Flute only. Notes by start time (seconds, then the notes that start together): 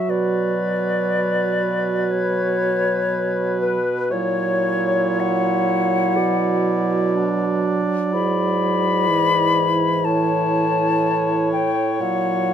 Already playing: E5
0.10 D5
2.11 C#5
3.61 B4
4.12 C#5
5.20 F#5
8.13 B5
10.05 A5
11.52 G5
12.01 F#5